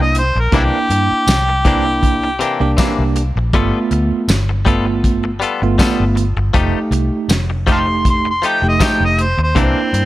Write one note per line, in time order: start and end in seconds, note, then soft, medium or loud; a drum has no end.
0.00 0.30 C2 medium
0.00 0.20 A#3 medium
0.00 0.21 D4 medium
0.00 0.21 E4 medium
0.00 0.16 D#5 medium
0.15 0.42 C5 medium
0.15 muted clean electric guitar stroke soft
0.15 closed hi-hat medium
0.35 0.50 A#1 medium
0.35 muted clean electric guitar stroke soft
0.40 0.54 A#4 medium
0.52 0.70 C2 medium
0.52 0.77 C3 medium
0.52 0.77 E3 medium
0.52 1.26 A#3 medium
0.52 0.78 A#3 medium
0.52 1.27 D4 medium
0.52 0.78 D4 medium
0.52 1.27 E4 medium
0.52 kick loud
0.52 closed hi-hat medium
0.56 0.63 D4 medium
0.56 0.62 E4 medium
0.56 2.76 G4 loud
0.90 1.08 G2 medium
0.90 muted clean electric guitar stroke soft
0.90 closed hi-hat medium
1.11 muted fingered electric bass stroke soft
1.27 2.41 C2 medium
1.27 muted clean electric guitar stroke soft
1.27 snare loud
1.27 closed hi-hat medium
1.27 tambourine loud
1.49 muted clean electric guitar stroke soft
1.65 1.86 C3 medium
1.65 1.86 E3 medium
1.65 2.28 A#3 medium
1.65 1.86 A#3 medium
1.65 2.28 D4 medium
1.65 1.85 D4 medium
1.65 2.29 E4 medium
1.65 kick medium
1.65 closed hi-hat medium
1.86 muted clean electric guitar stroke soft
2.03 kick medium
2.03 closed hi-hat medium
2.24 muted clean electric guitar stroke soft
2.39 2.61 C3 medium
2.39 2.61 E3 medium
2.39 2.62 A#3 medium
2.39 2.61 D4 medium
2.39 closed hi-hat medium
2.60 2.75 C2 medium
2.60 3.21 A#3 medium
2.60 3.22 D4 medium
2.60 3.22 G4 medium
2.60 muted clean electric guitar stroke soft
2.77 3.02 C3 medium
2.77 3.02 E3 medium
2.77 3.03 A#3 medium
2.77 3.03 D4 medium
2.77 kick medium
2.77 snare loud
2.77 closed hi-hat medium
2.77 tambourine loud
2.99 3.31 C2 medium
3.16 muted clean electric guitar stroke soft
3.16 closed hi-hat medium
3.36 3.51 A#1 medium
3.36 muted clean electric guitar stroke soft
3.53 3.71 G1 medium
3.53 3.78 G3 medium
3.53 4.28 A3 medium
3.53 4.28 B3 medium
3.53 3.78 B3 medium
3.53 4.28 F4 loud
3.53 3.79 F4 medium
3.53 3.79 A4 medium
3.53 kick medium
3.53 closed hi-hat medium
3.91 4.09 D2 medium
3.91 muted clean electric guitar stroke soft
3.91 closed hi-hat medium
4.11 muted fingered electric bass stroke soft
4.28 5.42 G1 medium
4.28 muted clean electric guitar stroke soft
4.28 snare loud
4.28 closed hi-hat medium
4.28 tambourine loud
4.49 muted clean electric guitar stroke soft
4.65 4.87 G3 medium
4.65 5.29 A3 medium
4.65 4.87 B3 medium
4.65 5.30 B3 medium
4.65 5.30 F4 medium
4.65 4.86 F4 medium
4.65 4.85 A4 medium
4.65 kick medium
4.65 closed hi-hat medium
4.86 muted clean electric guitar stroke soft
5.04 kick medium
5.04 closed hi-hat medium
5.24 muted clean electric guitar stroke soft
5.40 5.61 G3 medium
5.40 5.62 B3 medium
5.40 5.62 F4 medium
5.40 5.61 A4 medium
5.40 closed hi-hat medium
5.62 5.76 G1 medium
5.62 6.23 A3 medium
5.62 6.23 B3 medium
5.62 6.23 F4 loud
5.62 muted clean electric guitar stroke soft
5.78 6.03 G3 medium
5.78 6.04 B3 medium
5.78 6.04 F4 medium
5.78 6.04 A4 medium
5.78 kick medium
5.78 snare loud
5.78 closed hi-hat medium
5.78 tambourine loud
6.00 6.32 G1 medium
6.15 muted clean electric guitar stroke soft
6.15 closed hi-hat medium
6.36 6.51 G1 medium
6.36 muted clean electric guitar stroke soft
6.54 6.72 F1 loud
6.54 6.78 F3 medium
6.54 7.29 A3 medium
6.54 6.79 A3 medium
6.54 7.29 D#4 medium
6.54 6.79 D#4 medium
6.54 7.29 G4 medium
6.54 6.79 G4 medium
6.54 kick loud
6.54 closed hi-hat medium
6.91 7.09 C2 medium
6.91 muted clean electric guitar stroke soft
6.91 closed hi-hat medium
7.28 8.43 F1 medium
7.28 muted clean electric guitar stroke soft
7.28 snare loud
7.28 closed hi-hat medium
7.28 tambourine loud
7.50 muted clean electric guitar stroke soft
7.67 7.88 F3 medium
7.67 8.30 A3 medium
7.67 7.88 A3 medium
7.67 8.31 D#4 medium
7.67 7.87 D#4 medium
7.67 8.31 G4 medium
7.67 7.86 G4 medium
7.67 kick medium
7.67 closed hi-hat medium
7.72 7.79 F5 medium
7.72 7.80 A5 medium
7.72 8.06 C6 medium
7.87 muted clean electric guitar stroke soft
8.05 kick medium
8.05 closed hi-hat medium
8.10 8.27 C6 medium
8.25 muted clean electric guitar stroke soft
8.31 8.49 C6 medium
8.42 8.63 F3 medium
8.42 8.64 A3 medium
8.42 8.63 D#4 medium
8.42 8.62 G4 medium
8.42 closed hi-hat medium
8.47 8.64 G5 medium
8.62 8.77 F1 medium
8.62 9.24 A3 medium
8.62 9.24 D#4 medium
8.62 9.24 G4 medium
8.62 muted clean electric guitar stroke soft
8.68 8.87 D#5 medium
8.80 9.04 F3 medium
8.80 9.05 A3 medium
8.80 9.05 D#4 medium
8.80 9.05 G4 medium
8.80 kick medium
8.80 snare loud
8.80 closed hi-hat medium
8.80 tambourine loud
8.85 9.02 G5 medium
9.00 9.33 F1 medium
9.05 9.23 D#5 medium
9.17 muted clean electric guitar stroke soft
9.17 closed hi-hat medium
9.22 9.39 C5 medium
9.38 9.53 D#2 medium
9.38 muted clean electric guitar stroke soft
9.43 9.60 C5 medium
9.55 9.73 C2 medium
9.55 9.80 C3 medium
9.55 9.80 E3 medium
9.55 10.05 A#3 medium
9.55 9.80 A#3 medium
9.55 10.05 C4 medium
9.55 10.05 D4 medium
9.55 9.81 D4 medium
9.55 10.05 E4 medium
9.55 kick loud
9.55 closed hi-hat medium
9.93 10.05 G2 medium
9.93 muted clean electric guitar stroke soft
9.93 closed hi-hat medium